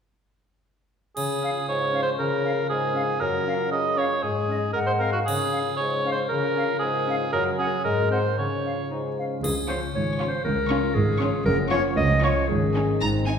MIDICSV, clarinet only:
0, 0, Header, 1, 2, 480
1, 0, Start_track
1, 0, Key_signature, -5, "major"
1, 0, Tempo, 515907
1, 1081, Time_signature, 2, 2, 24, 8
1, 12457, End_track
2, 0, Start_track
2, 0, Title_t, "Clarinet"
2, 0, Program_c, 0, 71
2, 1312, Note_on_c, 0, 61, 35
2, 1401, Note_off_c, 0, 61, 0
2, 1792, Note_on_c, 0, 61, 39
2, 1880, Note_off_c, 0, 61, 0
2, 2270, Note_on_c, 0, 61, 42
2, 2357, Note_off_c, 0, 61, 0
2, 2733, Note_on_c, 0, 61, 43
2, 2822, Note_off_c, 0, 61, 0
2, 3219, Note_on_c, 0, 61, 41
2, 3305, Note_off_c, 0, 61, 0
2, 3685, Note_on_c, 0, 61, 39
2, 3774, Note_off_c, 0, 61, 0
2, 4167, Note_on_c, 0, 61, 33
2, 4257, Note_off_c, 0, 61, 0
2, 4649, Note_on_c, 0, 60, 34
2, 4739, Note_off_c, 0, 60, 0
2, 5140, Note_on_c, 0, 61, 37
2, 5229, Note_off_c, 0, 61, 0
2, 5626, Note_on_c, 0, 61, 40
2, 5713, Note_off_c, 0, 61, 0
2, 6101, Note_on_c, 0, 61, 43
2, 6187, Note_off_c, 0, 61, 0
2, 6572, Note_on_c, 0, 61, 49
2, 6659, Note_off_c, 0, 61, 0
2, 7054, Note_on_c, 0, 61, 45
2, 7141, Note_off_c, 0, 61, 0
2, 7537, Note_on_c, 0, 60, 38
2, 7626, Note_off_c, 0, 60, 0
2, 8032, Note_on_c, 0, 61, 28
2, 8122, Note_off_c, 0, 61, 0
2, 8281, Note_on_c, 0, 63, 37
2, 8393, Note_off_c, 0, 63, 0
2, 8524, Note_on_c, 0, 61, 31
2, 8766, Note_off_c, 0, 61, 0
2, 8774, Note_on_c, 0, 68, 58
2, 8882, Note_off_c, 0, 68, 0
2, 9010, Note_on_c, 0, 72, 54
2, 9119, Note_off_c, 0, 72, 0
2, 9256, Note_on_c, 0, 73, 64
2, 9560, Note_off_c, 0, 73, 0
2, 9565, Note_on_c, 0, 72, 59
2, 9711, Note_off_c, 0, 72, 0
2, 9717, Note_on_c, 0, 70, 67
2, 10183, Note_on_c, 0, 68, 64
2, 10197, Note_off_c, 0, 70, 0
2, 10653, Note_off_c, 0, 68, 0
2, 10658, Note_on_c, 0, 70, 70
2, 10766, Note_off_c, 0, 70, 0
2, 10894, Note_on_c, 0, 73, 72
2, 11003, Note_off_c, 0, 73, 0
2, 11136, Note_on_c, 0, 75, 83
2, 11385, Note_on_c, 0, 73, 67
2, 11399, Note_off_c, 0, 75, 0
2, 11616, Note_on_c, 0, 68, 56
2, 11630, Note_off_c, 0, 73, 0
2, 12106, Note_off_c, 0, 68, 0
2, 12457, End_track
0, 0, End_of_file